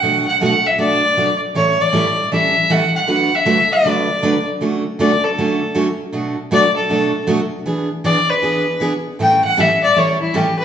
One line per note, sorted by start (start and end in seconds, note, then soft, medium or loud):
0.00 0.24 B2 medium
0.00 0.25 F#3 medium
0.00 0.25 A3 medium
0.00 0.25 D4 medium
0.00 0.27 F#5 medium
0.04 0.25 F#4 medium
0.27 0.40 F#5 medium
0.41 0.52 B2 medium
0.41 0.53 F#3 medium
0.41 0.53 A3 medium
0.41 0.53 D4 medium
0.41 0.53 F#4 medium
0.41 0.68 F#5 loud
0.66 0.79 E5 medium
0.78 1.00 B2 medium
0.78 1.01 F#3 medium
0.78 1.01 A3 medium
0.78 1.01 D4 medium
0.78 1.01 F#4 medium
0.78 1.38 D5 loud
1.17 1.29 B2 medium
1.17 1.29 F#3 medium
1.17 1.29 A3 medium
1.17 1.29 D4 medium
1.17 1.29 F#4 medium
1.55 1.77 A2 medium
1.55 1.77 E3 medium
1.55 1.77 G3 medium
1.55 1.77 C#4 medium
1.55 1.77 E4 medium
1.55 1.77 A4 medium
1.55 1.82 C#5 loud
1.81 2.32 D5 loud
1.93 2.05 A2 medium
1.93 2.05 E3 medium
1.93 2.05 G3 medium
1.93 2.05 C#4 medium
1.93 2.05 E4 medium
1.93 2.05 A4 medium
2.32 2.54 A2 medium
2.32 2.53 E3 medium
2.32 2.54 G3 medium
2.32 2.54 C#4 medium
2.32 2.54 E4 medium
2.32 2.54 A4 medium
2.32 2.73 E5 medium
2.69 2.81 A2 medium
2.69 2.81 E3 medium
2.69 2.81 G3 medium
2.69 2.82 C#4 medium
2.69 2.82 E4 medium
2.69 2.82 A4 medium
2.69 2.95 F#5 loud
2.96 3.36 F#5 medium
3.07 3.29 D3 soft
3.07 3.30 F#3 medium
3.07 3.30 A3 medium
3.07 3.30 D4 medium
3.07 3.30 F#4 medium
3.07 3.30 B4 medium
3.35 3.74 E5 loud
3.46 3.57 D3 medium
3.46 3.57 F#3 medium
3.46 3.58 A3 medium
3.46 3.58 D4 medium
3.46 3.58 F#4 medium
3.46 3.58 B4 medium
3.72 4.48 D5 medium
3.85 4.07 D3 medium
3.85 4.07 F#3 medium
3.85 4.07 A3 medium
3.85 4.07 D4 medium
3.85 4.07 F#4 medium
3.85 4.07 B4 medium
4.22 4.34 D3 medium
4.22 4.34 F#3 medium
4.22 4.34 A3 medium
4.22 4.34 D4 medium
4.22 4.34 F#4 medium
4.22 4.34 B4 medium
4.61 4.83 D3 medium
4.61 4.83 F#3 medium
4.61 4.83 A3 medium
4.61 4.83 C#4 medium
4.61 4.83 F#4 medium
4.99 5.10 D3 medium
4.99 5.11 F#3 medium
4.99 5.11 A3 medium
4.99 5.11 C#4 medium
4.99 5.11 F#4 medium
4.99 5.25 D5 medium
5.24 5.75 A4 medium
5.38 5.59 D3 medium
5.38 5.59 F#3 medium
5.38 5.60 A3 medium
5.38 5.60 C#4 medium
5.38 5.60 F#4 medium
5.75 5.86 D3 medium
5.75 5.87 F#3 medium
5.75 5.87 A3 medium
5.75 5.87 C#4 medium
5.75 5.87 F#4 medium
6.12 6.35 B2 medium
6.12 6.35 F#3 medium
6.12 6.35 A3 medium
6.12 6.35 D4 medium
6.12 6.35 F#4 medium
6.51 6.63 B2 medium
6.51 6.63 F#3 medium
6.51 6.63 A3 medium
6.51 6.63 D4 medium
6.51 6.63 F#4 medium
6.51 6.75 D5 loud
6.76 7.24 A4 medium
6.89 7.11 B2 medium
6.89 7.12 F#3 medium
6.89 7.12 A3 medium
6.89 7.12 D4 medium
6.89 7.12 F#4 medium
7.27 7.39 B2 medium
7.27 7.39 F#3 medium
7.27 7.39 A3 medium
7.27 7.39 D4 medium
7.27 7.40 F#4 medium
7.66 7.88 E3 medium
7.66 7.88 B3 medium
7.66 7.88 D4 medium
7.66 7.88 G#4 medium
8.04 8.16 E3 medium
8.04 8.16 B3 medium
8.04 8.16 D4 medium
8.04 8.16 G#4 medium
8.04 8.31 D5 loud
8.29 8.81 B4 medium
8.42 8.64 E3 medium
8.42 8.64 B3 medium
8.42 8.64 D4 medium
8.42 8.65 G#4 medium
8.80 8.92 E3 medium
8.80 8.92 B3 medium
8.80 8.92 D4 medium
8.80 8.92 G#4 medium
9.19 9.41 A2 medium
9.19 9.41 E3 medium
9.19 9.41 G3 medium
9.19 9.41 C#4 medium
9.19 9.41 E4 medium
9.19 9.41 A4 medium
9.19 9.43 G5 medium
9.44 9.62 F#5 medium
9.57 9.68 A2 medium
9.57 9.69 E3 medium
9.57 9.69 G3 medium
9.57 9.69 C#4 medium
9.57 9.69 E4 medium
9.57 9.69 A4 medium
9.57 9.83 E5 medium
9.83 10.00 D5 loud
9.96 10.17 A2 medium
9.96 10.17 E3 medium
9.96 10.17 G3 medium
9.96 10.17 C#4 medium
9.96 10.18 E4 medium
9.96 10.18 A4 medium
9.96 10.20 C#5 medium
10.21 10.37 E4 medium
10.34 10.45 A2 medium
10.34 10.45 E3 medium
10.34 10.45 G3 medium
10.34 10.45 C#4 medium
10.34 10.45 E4 medium
10.34 10.58 G4 medium
10.34 10.45 A4 medium
10.59 10.65 B4 loud